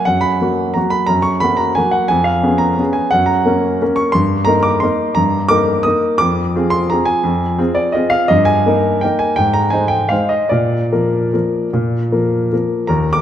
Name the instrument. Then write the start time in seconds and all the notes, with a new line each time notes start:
grand piano
0.05 F#2 F#5
0.21 B5
0.41 F#3 A#3 F#4
0.74 F#3 A#3 F#4 A#5
0.90 B5
1.06 F#2 A#5
1.22 C#6
1.40 F#3 A#3 F#4 B5
1.57 A#5
1.75 F#3 A#3 F#4 G#5
1.91 F#5
2.08 F2 G#5
2.24 F5
2.43 B3 C#4 G#4
2.58 A#5
2.79 B3 C#4 G#4
2.93 G#5
3.11 F#2 F#5
3.26 A#5
3.46 A#3 C#4 A#4
3.82 A#3 C#4 A#4
3.96 C#6
4.12 G2 C6
4.45 A#3 D#4 A#4 A#5
4.63 D6
4.80 A#3 D#4 A#4 C6
5.15 G2 A#5
5.49 A#3 D#4 A#4 D6
5.83 A#3 D#4 A#4 D#6
6.18 F2 D6
6.56 C4 F4 G#4
6.70 C6
6.90 C4 F4 G#4 A#5
7.05 G#5
7.24 F2
7.58 C4 F4 G#4
7.75 D5
7.92 C4 F4 G#4 D#5
8.10 F5
8.28 G2 D#5
8.45 G#5
8.66 A#3 D#4 A#4
9.01 A#3 D#4 A#4 G5
9.19 G#5
9.36 G#2 G5
9.53 A#5
9.70 G#3 D#4 C5 G#5
9.88 G5
10.09 G#3 D#4 C5 F5
10.29 D#5
10.49 A#2 D5
10.92 F3 A#3 A#4
11.33 F3 A#3 A#4
11.73 A#2
12.12 F3 A#3 A#4
12.53 F3 A#3 A#4
12.87 D#2 A#4 A#5
13.13 D6